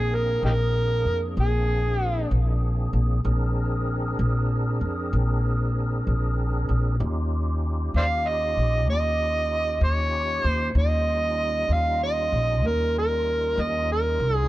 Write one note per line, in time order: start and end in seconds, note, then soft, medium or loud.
0.00 0.39 A#1 medium
0.00 3.20 A#3 medium
0.00 3.20 C4 medium
0.00 3.20 D4 medium
0.00 0.17 G#4 medium
0.00 3.20 G#4 medium
0.15 0.45 A#4 medium
0.43 1.01 A#1 medium
0.43 0.52 D#4 medium
0.43 0.52 G4 medium
0.43 1.23 A#4 medium
1.05 1.38 F2 medium
1.37 2.27 A#1 medium
1.37 2.00 G#4 medium
2.00 2.28 G4 medium
2.31 2.89 A#1 medium
2.93 3.22 A#1 medium
3.24 4.14 A#1 medium
3.24 6.96 C4 medium
3.24 6.97 D4 medium
3.24 6.96 G#4 medium
3.24 6.97 A#4 medium
4.19 4.77 A#1 medium
4.81 5.14 F2 medium
5.13 6.02 A#1 medium
6.07 6.65 A#1 medium
6.69 6.98 A#1 medium
7.00 7.90 D#2 medium
7.00 10.72 C#4 medium
7.00 10.72 D#4 medium
7.00 10.72 F4 medium
7.00 10.72 G4 medium
7.94 8.53 D#2 medium
7.94 8.05 C5 medium
7.94 8.05 D5 medium
7.94 8.29 F5 medium
8.27 8.89 D#5 medium
8.57 8.88 A#1 medium
8.88 9.78 D#2 medium
8.88 9.79 D#5 loud
9.81 10.40 D#2 medium
9.81 10.44 C#5 loud
10.44 10.73 D#2 medium
10.44 10.73 C5 loud
10.75 11.65 D#2 medium
10.75 14.47 G3 medium
10.75 14.47 C#4 medium
10.75 14.47 D#4 medium
10.75 14.47 F4 medium
10.75 11.74 D#5 loud
11.69 12.28 D#2 medium
11.69 12.02 F5 medium
12.04 12.68 D#5 medium
12.32 12.63 A#1 medium
12.63 13.53 D#2 medium
12.63 12.96 A#4 medium
12.98 13.63 A#4 medium
13.58 14.16 D#2 medium
13.58 13.91 D#5 medium
13.92 14.35 A#4 medium
14.20 14.48 C2 medium
14.35 14.48 G#4 medium